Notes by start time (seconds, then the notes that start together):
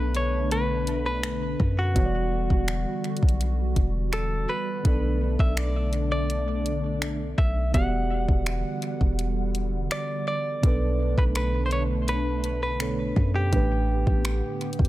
Already playing: B1 B2 D3 A3 B3 D4 A4 B4
0.15 C#5, closed hi-hat
0.51 B4, closed hi-hat
0.87 closed hi-hat
1.06 B4
1.23 finger snap, closed hi-hat
1.60 F#2, kick
1.79 F#4
1.93 E1 D3 E3 G3 B3 F#4, kick, closed hi-hat
1.98 C#5
2.05 D5
2.50 E1, kick
2.68 finger snap, closed hi-hat
3.04 closed hi-hat
3.17 closed hi-hat
3.23 B1, kick
3.29 closed hi-hat
3.41 closed hi-hat
3.76 E1, kick, closed hi-hat
4.13 A4, finger snap, closed hi-hat
4.49 B4
4.82 B1 B2 D3 A3 B3 D4 A4, kick, closed hi-hat
4.88 D5
5.39 B1 E5, kick
5.57 D5, finger snap, closed hi-hat
5.93 closed hi-hat
6.12 D5
6.30 closed hi-hat
6.66 closed hi-hat
7.02 finger snap, closed hi-hat
7.38 B1 E5, kick
7.72 E1 D3 E3 G3 B3 F#4 G4 F#5, kick, closed hi-hat
7.77 D5
8.28 E1, kick
8.46 finger snap, closed hi-hat
8.82 closed hi-hat
9.01 E1, kick
9.19 closed hi-hat
9.55 closed hi-hat
9.91 D5, finger snap, closed hi-hat
10.28 D5
10.61 B1 B2 D3 A3 B3 D4 A4, kick, closed hi-hat
10.66 B4
11.18 B1 B4, kick
11.35 B4, finger snap, closed hi-hat
11.66 C5
11.71 C#5, closed hi-hat
12.08 B4, closed hi-hat
12.44 closed hi-hat
12.63 B4
12.79 B2 B3 D4 A4 C#5, finger snap, closed hi-hat
13.16 F#2, kick
13.35 G4
13.50 A1 A2 D3 A3 B3 D4 G4, kick, closed hi-hat
13.55 B4
14.07 A1, kick
14.25 finger snap, closed hi-hat
14.61 closed hi-hat
14.73 closed hi-hat
14.79 E2, kick
14.85 closed hi-hat